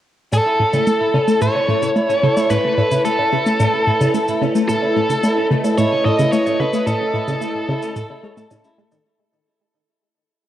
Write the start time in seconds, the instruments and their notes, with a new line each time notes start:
0.32 synth arpeggio sound A2, analog synth pad A3, synth texture E4, clean electric guitar A4, lead electric guitar A4, cabasa, low woodblock
0.46 clean electric guitar E4
0.59 synth arpeggio sound A2, clean electric guitar C#4, analog synth pad E4
0.73 synth arpeggio sound C#3, clean electric guitar A3, analog synth pad B4, cabasa, low woodblock
0.87 synth arpeggio sound A3, clean electric guitar A4, cabasa
1.00 clean electric guitar E4
1.14 synth arpeggio sound C#3, clean electric guitar C#4, analog synth pad C#5, low woodblock
1.28 synth arpeggio sound A3, clean electric guitar A4, cabasa
1.41 synth arpeggio sound A2, clean electric guitar E4, lead electric guitar C#5, cabasa
1.55 clean electric guitar C#4, low woodblock
1.68 synth arpeggio sound A2, clean electric guitar A3
1.82 synth arpeggio sound C#3, clean electric guitar A4, cabasa
1.96 synth arpeggio sound A3, clean electric guitar E4, cabasa, low woodblock
2.09 clean electric guitar C#4, cabasa
2.23 synth arpeggio sound C#3, clean electric guitar A4
2.37 synth arpeggio sound A3, clean electric guitar E4, cabasa, low woodblock
2.50 synth arpeggio sound A2, clean electric guitar C#4, lead electric guitar B4, cabasa
2.64 clean electric guitar A3
2.78 synth arpeggio sound A2, clean electric guitar A4, low woodblock
2.91 synth arpeggio sound C#3, clean electric guitar E4, cabasa
3.05 synth arpeggio sound A3, clean electric guitar C#4, lead electric guitar A4, cabasa
3.19 clean electric guitar A4, low woodblock
3.33 synth arpeggio sound C#3, clean electric guitar E4
3.46 synth arpeggio sound A3, clean electric guitar C#4, cabasa
3.60 synth arpeggio sound A2, clean electric guitar A3, cabasa, low woodblock
3.74 clean electric guitar A4
3.87 synth arpeggio sound A2, clean electric guitar E4
4.01 synth arpeggio sound C#3, clean electric guitar C#4, cabasa, low woodblock
4.14 synth arpeggio sound A3, clean electric guitar A4, cabasa
4.28 clean electric guitar E4, cabasa
4.41 synth arpeggio sound C#3, clean electric guitar C#4, low woodblock
4.55 synth arpeggio sound A3, clean electric guitar A3, cabasa
4.69 synth arpeggio sound A2, lead electric guitar A4, clean electric guitar A4, cabasa
4.78 analog synth pad D#5
4.83 clean electric guitar E4, low woodblock
4.96 synth arpeggio sound A2, clean electric guitar C#4
5.10 synth arpeggio sound C#3, clean electric guitar A4, cabasa
5.23 synth arpeggio sound A3, clean electric guitar E4, cabasa, low woodblock
5.38 clean electric guitar C#4
5.51 synth arpeggio sound C#3, clean electric guitar A3
5.64 synth arpeggio sound A3, clean electric guitar A4, cabasa, low woodblock
5.78 synth arpeggio sound A2, clean electric guitar E4, lead electric guitar C#5, cabasa
5.92 clean electric guitar C#4
6.05 synth arpeggio sound A2, clean electric guitar A4, lead electric guitar D#5, low woodblock
6.19 synth arpeggio sound C#3, clean electric guitar E4, cabasa
6.32 synth arpeggio sound A3, clean electric guitar C#4, lead electric guitar C#5, cabasa
6.46 clean electric guitar A3, cabasa, low woodblock
6.60 synth arpeggio sound C#3, clean electric guitar A4, lead electric guitar B4
6.73 synth arpeggio sound A3, clean electric guitar E4, cabasa
6.87 synth arpeggio sound A2, clean electric guitar C#4, lead electric guitar A4, cabasa, low woodblock
7.01 clean electric guitar A4
7.14 synth arpeggio sound A2, clean electric guitar E4
7.28 synth arpeggio sound C#3, clean electric guitar C#4, cabasa, low woodblock
7.41 synth arpeggio sound A3, clean electric guitar A3, cabasa
7.55 clean electric guitar A4
7.69 synth arpeggio sound C#3, clean electric guitar E4, low woodblock
7.82 synth arpeggio sound A3, clean electric guitar C#4, cabasa
7.96 synth arpeggio sound A2, clean electric guitar A4, cabasa
8.10 clean electric guitar E4, low woodblock
8.23 synth arpeggio sound G#3, clean electric guitar C#5
8.37 synth arpeggio sound A3, clean electric guitar A5, cabasa
8.51 synth arpeggio sound A2, clean electric guitar C#4, cabasa, low woodblock
8.64 clean electric guitar E4, cabasa
8.78 synth arpeggio sound G#3, clean electric guitar A3
8.92 synth arpeggio sound D#3, clean electric guitar A4, cabasa, low woodblock